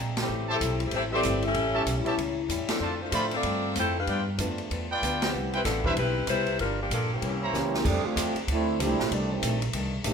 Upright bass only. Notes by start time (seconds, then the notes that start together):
Already playing: A#1
0.28 A1
0.61 B1
0.92 A1
1.23 G1
1.54 A1
1.86 B1
2.06 muted upright bass stroke
2.18 C#2
2.48 E2
2.68 muted upright bass stroke
2.80 F2
3.12 A2
3.43 G2
3.75 F2
4.07 G2
4.38 F2
4.71 E2
5.02 D2
5.34 C2
5.65 A1
5.96 B1
6.27 C2
6.58 G1
6.90 A#1
7.22 C2
7.53 C#2
7.84 F2
8.05 muted upright bass stroke
8.16 E2
8.35 muted upright bass stroke
8.48 D2
8.79 C#2
8.89 C2
9.00 A1
9.11 C2
9.42 A#1
9.74 C2
10.04 A1